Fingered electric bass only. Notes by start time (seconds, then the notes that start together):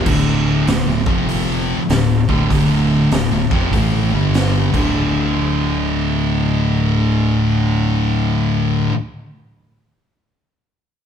0.07 D1
0.67 D1
0.86 D1
1.06 F1
1.78 muted fingered electric bass stroke
1.89 D1
2.29 D1
2.50 D1
3.11 D1
3.32 D1
3.51 F1
3.73 A1
4.13 G1
4.74 D1